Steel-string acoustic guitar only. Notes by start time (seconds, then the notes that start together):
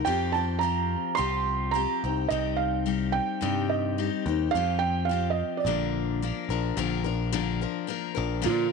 0.06 F3 C4 F4 G4
0.34 C4 F4 G4
0.61 F3 C4 F4 G4
1.17 F3 C4 F4 G4
1.74 F3 C4 F4 G4
2.04 C4 D#4 G4
2.30 C3 G3 C4 D#4 G4
2.86 G3 C4 D#4 G4
3.41 C3 G3 C4 D#4 G4
3.98 G3 C4 D#4 G4
4.26 C4 D#4 G4
4.55 F3 C4 F4 G4
5.09 F3 C4 F4 G4
5.66 A#2 D3 F3 A#3 D4 A#4
6.22 F3 A#3 D4 A#4
6.50 F3 A#3 D4 A#4
6.77 A#2 D3 F3 A#3 D4 A#4
7.04 F3 A#3 D4 A#4
7.32 A#2 D3 F3 A#3 D4 A#4
7.61 F3 A#3 D4 A#4
7.87 F3 A#3 D4 A#4
8.15 F3 A#3 D4 A#4
8.42 A#2 D3 F3 A#3 D4 A#4